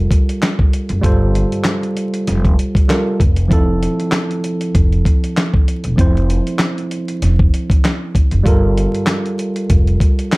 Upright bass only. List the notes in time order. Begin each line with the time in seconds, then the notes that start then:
0.90 F#1
1.04 G1
2.28 F1
3.20 F1
4.75 F1
5.85 E1
5.98 F1
7.22 F1
8.32 F#1
8.46 G1
9.70 F1